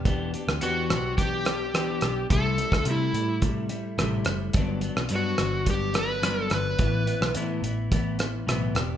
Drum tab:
HH |x-x-x-x-x-x-x-x-|x-x-x-x-x-x-x-x-|x-x-x-x-x-x-x-x-|x-x-x-x-x-x-x-x-|
SD |---r--r---r-r-r-|---r--------r-r-|---r--r---r-r-r-|---r------r-r-r-|
BD |o-------o-------|o--o----o-------|o-------o-------|o-------o-------|